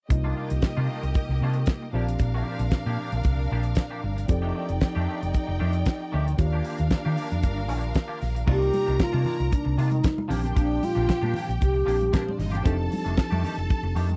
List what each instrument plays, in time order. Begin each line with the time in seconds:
0.09 fingered electric bass C2, tine electric piano C3 G3 A#3 D#4 F4 D#5, string section A#3 G4 D#5, muted clean electric guitar stroke, kick, closed hi-hat
0.24 clean electric guitar D#3 A#3 D4 F4
0.36 clean electric guitar D#3 A#3 D4 F4
0.50 fingered electric bass C2, muted clean electric guitar stroke, closed hi-hat
0.62 muted clean electric guitar stroke, kick, snare, closed hi-hat
0.77 fingered electric bass C3, clean electric guitar D#3 A#3 D4 F4
0.89 clean electric guitar D#3 A#3 D4 F4
1.03 fingered electric bass C2, muted clean electric guitar stroke, closed hi-hat
1.14 kick, closed hi-hat
1.29 fingered electric bass C2, muted clean electric guitar stroke
1.41 fingered electric bass C3, clean electric guitar D#3 A#3 D4 F4
1.53 muted clean electric guitar stroke, closed hi-hat
1.66 muted clean electric guitar stroke, kick, snare, closed hi-hat
1.82 muted clean electric guitar stroke
1.93 fingered electric bass A#1, tine electric piano A#2 F3 C4 G4 D5, clean electric guitar F3 A#3 D4 G4, string section D4 A#4 F5
2.08 muted clean electric guitar stroke, closed hi-hat
2.19 fingered electric bass A#1, muted clean electric guitar stroke, kick, closed hi-hat
2.34 clean electric guitar F3 A#3 D4 G4
2.47 clean electric guitar F3 A#3 D4 G4
2.59 fingered electric bass A#1, muted clean electric guitar stroke, closed hi-hat
2.71 muted clean electric guitar stroke, kick, snare, closed hi-hat
2.86 fingered electric bass A#2, clean electric guitar F3 A#3 D4 G4
3.00 clean electric guitar F3 A#3 D4 G4
3.12 fingered electric bass A#1, muted clean electric guitar stroke, closed hi-hat
3.23 fingered electric bass C2, kick, closed hi-hat
3.39 muted clean electric guitar stroke
3.51 fingered electric bass A#1, clean electric guitar F3 A#3 D4 G4
3.63 muted clean electric guitar stroke, closed hi-hat
3.75 muted clean electric guitar stroke, kick, snare, closed hi-hat
3.90 clean electric guitar F3 A#3 D4 G4
4.02 fingered electric bass G1, muted clean electric guitar stroke
4.17 muted clean electric guitar stroke, closed hi-hat
4.28 fingered electric bass F1, tine electric piano F3 C4 D#4 G4 A4 D5, string section D#4 D5 G5, muted clean electric guitar stroke, kick, closed hi-hat
4.42 clean electric guitar D#3 A3 D4 G4
4.54 clean electric guitar D#3 A3 D4 G4
4.68 fingered electric bass F1, muted clean electric guitar stroke, closed hi-hat
4.81 muted clean electric guitar stroke, muted fingered electric bass stroke, kick, snare, closed hi-hat
4.95 fingered electric bass F2, clean electric guitar D#3 A3 D4 G4
5.08 clean electric guitar D#3 A3 D4 G4
5.22 fingered electric bass F1, muted clean electric guitar stroke, closed hi-hat
5.34 kick, closed hi-hat
5.47 fingered electric bass F1, muted clean electric guitar stroke
5.59 fingered electric bass F2, clean electric guitar D#3 A3 D4 G4
5.73 muted clean electric guitar stroke, closed hi-hat
5.85 muted clean electric guitar stroke, kick, snare, closed hi-hat
6.00 muted clean electric guitar stroke
6.12 fingered electric bass D2, clean electric guitar D#3 A3 D4 G4
6.26 muted clean electric guitar stroke, closed hi-hat
6.37 fingered electric bass D#2, tine electric piano D#3 A#3 F4 G4 C#5, string section D4 A#4 F5, muted clean electric guitar stroke, kick, closed hi-hat
6.46 tine electric piano D5
6.53 clean electric guitar F3 A#3 D4 G4
6.64 clean electric guitar F3 A#3 D4 G4, open hi-hat
6.78 fingered electric bass D#2, muted clean electric guitar stroke, closed hi-hat
6.90 muted clean electric guitar stroke, kick, snare, closed hi-hat
7.05 fingered electric bass D#3, clean electric guitar F3 A#3 D4 G4
7.17 clean electric guitar F3 A#3 D4 G4, open hi-hat
7.31 fingered electric bass F2, muted clean electric guitar stroke, closed hi-hat
7.43 fingered electric bass G1, kick, closed hi-hat
7.58 muted clean electric guitar stroke
7.68 fingered electric bass A#1, clean electric guitar F3 A#3 D4 G4, open hi-hat
7.82 muted clean electric guitar stroke, closed hi-hat
7.94 muted clean electric guitar stroke, kick, snare, closed hi-hat
8.08 clean electric guitar F3 A#3 D4 G4
8.20 fingered electric bass A#1, muted clean electric guitar stroke, snare, open hi-hat
8.35 muted clean electric guitar stroke, closed hi-hat
8.46 fingered electric bass C2, tine electric piano C3 G3 A#3 D#4 F4 D5, clean electric guitar D#3 A#3 D4 F4, string section A#4 A#5, kick, crash
8.52 alto flute G4
8.61 muted clean electric guitar stroke, muted conga
8.72 muted clean electric guitar stroke, open hi-hat, high conga
8.86 fingered electric bass C2, clean electric guitar D#3 A#3 D4 G4, closed hi-hat
8.99 alto flute F4, kick, snare, closed hi-hat, muted conga
9.12 fingered electric bass C3, clean electric guitar D#3 A#3 D4 F4, high conga
9.24 clean electric guitar D#3 A#3 D4 F4, open hi-hat, low conga
9.38 fingered electric bass C2, muted clean electric guitar stroke, closed hi-hat
9.50 alto flute D4, muted clean electric guitar stroke, kick, closed hi-hat
9.65 fingered electric bass C2, muted clean electric guitar stroke, muted conga
9.78 fingered electric bass C3, clean electric guitar D#3 A#3 D4 F4, alto flute D#4, open hi-hat
9.90 muted clean electric guitar stroke, closed hi-hat, high conga
10.03 muted clean electric guitar stroke, kick, snare, closed hi-hat, high conga
10.18 muted clean electric guitar stroke, muted conga, high conga
10.28 fingered electric bass A#1, tine electric piano A#2 F3 C4 D4 G4, clean electric guitar F3 A#3 D4 G4, string section G4 G5, snare, open hi-hat, low conga
10.43 clean electric guitar F3 A#3 D4 G4, closed hi-hat, low conga
10.54 fingered electric bass A#1, clean electric guitar F3 A#3 D4 G4, alto flute D4, kick, closed hi-hat
10.69 muted clean electric guitar stroke
10.82 alto flute F4, muted clean electric guitar stroke, open hi-hat, high conga
10.95 fingered electric bass A#1, clean electric guitar F3 A#3 D4 G4, closed hi-hat
11.08 muted clean electric guitar stroke, kick, snare, closed hi-hat
11.21 fingered electric bass A#2, clean electric guitar F3 A#3 D4 G4, muted conga, high conga
11.34 clean electric guitar F3 A#3 D4 G4, open hi-hat, low conga
11.49 fingered electric bass A#1, muted clean electric guitar stroke, closed hi-hat
11.61 fingered electric bass C2, alto flute G4, muted clean electric guitar stroke, kick, closed hi-hat, muted conga
11.73 muted clean electric guitar stroke
11.85 fingered electric bass A#1, tine electric piano A#2 F3 C4 D4 G4, clean electric guitar F3 A#3 D4 G4, open hi-hat
11.99 muted clean electric guitar stroke, closed hi-hat, high conga
12.12 clean electric guitar F3 A#3 D4 G4, string section A#3 A#4, kick, snare, closed hi-hat, high conga
12.23 string section C4 C5, muted clean electric guitar stroke
12.29 string section D4 D5, high conga
12.37 fingered electric bass G1, string section D#4 D#5, muted clean electric guitar stroke, snare, open hi-hat, low conga
12.49 clean electric guitar D4 G4, string section F4 F5
12.53 clean electric guitar F3 A#3, closed hi-hat, low conga
12.57 string section G4 G5
12.63 fingered electric bass F1, clean electric guitar D#3 A3 D4 G4, tine electric piano F3 C4 D4 D#4 G4 A4, string section A4 A5, kick, closed hi-hat, muted conga
12.78 muted clean electric guitar stroke
12.90 muted clean electric guitar stroke, open hi-hat, high conga
13.05 fingered electric bass F1, clean electric guitar D#3 A3 D4 A4, closed hi-hat
13.17 muted clean electric guitar stroke, muted fingered electric bass stroke, kick, snare, closed hi-hat
13.31 fingered electric bass F2, clean electric guitar D#3 A3 D4 G4, muted conga, high conga
13.43 clean electric guitar D#3 A3 D4 G4, open hi-hat, low conga
13.57 fingered electric bass F1, muted clean electric guitar stroke, closed hi-hat
13.70 muted clean electric guitar stroke, kick, closed hi-hat, muted conga
13.83 fingered electric bass F1, muted clean electric guitar stroke, muted conga
13.95 fingered electric bass F2, clean electric guitar D#3 A3 D4 G4, open hi-hat
14.09 muted clean electric guitar stroke, closed hi-hat, high conga